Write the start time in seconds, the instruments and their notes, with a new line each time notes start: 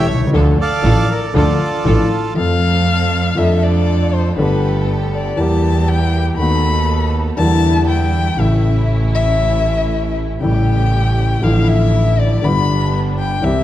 Already playing: bandoneon C#5
0.07 double bass C2, violin C#5, bandoneon E5
0.14 grand piano B1
0.20 grand piano C2
0.27 grand piano C#2
0.33 grand piano D2 D3 F3 A3 D4 A4, double bass D2, string section D4 F4 A4
0.60 bandoneon A4 D5 F5, violin D5
0.82 grand piano A1 A2 F3 A3 D4 A4, double bass A1, string section D4 F4 A4
1.10 violin A#4, bandoneon D5
1.34 grand piano D2 D3 F3 A3 D4 A4, double bass D2, string section D4 F4 A4, bandoneon F4 A4 D5, violin A4
1.84 grand piano A1 A2 F3 A3 D4 A4, double bass A1, string section D4 F4 A4
2.34 grand piano F2 F3 A3 C4 A4, double bass F2, string section C4 F4 A4, violin F5
3.35 grand piano F2 F3 A3 D4 A4, double bass F2, string section D4 F4 A4, violin E5
3.63 violin D5
4.14 violin C5
4.37 double bass G1, grand piano G1 G2 D3 A3 B3, string section B3 G4 A4, violin B4
4.41 grand piano G4
5.14 violin D5
5.36 grand piano E2 E3 G3 A#3, double bass E2, string section A#3 E4 G4, violin A5
5.40 grand piano G4
5.88 violin G5
6.37 double bass D#2, grand piano D#2 D#3 A3 B3 F#4, string section B3 D#4 A4, violin B5
7.37 double bass E2, grand piano E2 D3 E3 G3 A#3, string section G3 D4 E4, violin A5
7.41 grand piano E4
7.88 violin G5
8.37 double bass A1, grand piano A1 A2 C#3 E3 A3, string section A3 C#4 E4, violin E5
8.41 grand piano E4
9.15 violin E5
10.40 double bass A1, grand piano A1 A2 C#3 G3 A3 E4, string section A3 C#4 G4, violin G5
11.42 double bass A1, grand piano A1 A2 D3 F3 A3 E4, string section F3 D4 E4, violin F5
11.68 violin E5
12.19 violin D5
12.42 grand piano G1 G2 D3 G3 B3, double bass G1, string section G3 B3 D4, violin B5
12.46 grand piano G4
13.19 violin G5
13.41 grand piano C2 C3 E3 G3 C4 G4, double bass C2, string section G3 C4 E4, violin E5